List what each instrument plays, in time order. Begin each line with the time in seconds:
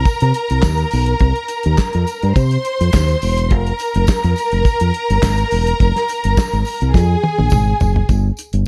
Already playing: violin section A#4 A#5
0.05 kick, closed hi-hat, tambourine
0.20 fingered electric bass C3, closed hi-hat
0.34 closed hi-hat
0.50 fingered electric bass C2, closed hi-hat
0.63 fingered electric bass D#2, kick, snare, clap, tambourine
0.77 closed hi-hat
0.91 fingered electric bass B1, open hi-hat, tambourine
1.06 closed hi-hat
1.19 fingered electric bass C2, kick, closed hi-hat
1.36 closed hi-hat
1.48 closed hi-hat, tambourine
1.63 fingered electric bass D#2, closed hi-hat
1.78 kick, snare, clap, tambourine
1.93 fingered electric bass F2, closed hi-hat
2.07 closed hi-hat, tambourine
2.22 fingered electric bass G2, closed hi-hat
2.36 fingered electric bass C3, violin section C5 C6, kick, closed hi-hat, tambourine
2.51 closed hi-hat
2.65 closed hi-hat
2.81 fingered electric bass F2, closed hi-hat
2.93 fingered electric bass D#2, kick, snare, clap, tambourine
3.08 closed hi-hat
3.22 fingered electric bass E1, open hi-hat, tambourine
3.37 closed hi-hat
3.51 fingered electric bass F1, violin section A#4 A#5, kick, closed hi-hat
3.67 closed hi-hat
3.79 closed hi-hat, tambourine
3.94 fingered electric bass F1, closed hi-hat
4.07 kick, snare, clap, tambourine
4.24 fingered electric bass F2, closed hi-hat
4.36 closed hi-hat, tambourine
4.52 fingered electric bass F1, closed hi-hat
4.65 muted fingered electric bass stroke, kick, closed hi-hat, tambourine
4.80 fingered electric bass F2, closed hi-hat
4.94 closed hi-hat
5.10 fingered electric bass G1, closed hi-hat
5.22 fingered electric bass G#1, kick, snare, clap, tambourine
5.38 closed hi-hat
5.51 fingered electric bass E1, open hi-hat, tambourine
5.67 closed hi-hat
5.80 fingered electric bass F1, kick, closed hi-hat
5.96 snare, closed hi-hat
6.08 closed hi-hat, tambourine
6.24 fingered electric bass G1, closed hi-hat
6.37 kick, snare, clap, tambourine
6.53 fingered electric bass G#1, closed hi-hat
6.65 open hi-hat, tambourine
6.81 fingered electric bass C2, closed hi-hat
6.93 fingered electric bass F2, violin section G#4 G#5, kick, snare, tambourine
7.24 high tom
7.38 fingered electric bass A#1, high tom
7.50 fingered electric bass G#1, kick, mid tom, tambourine
7.80 fingered electric bass F#1, floor tom, tambourine
7.96 floor tom
8.09 fingered electric bass G1, kick, closed hi-hat, tambourine
8.37 closed hi-hat, tambourine
8.53 fingered electric bass G1, closed hi-hat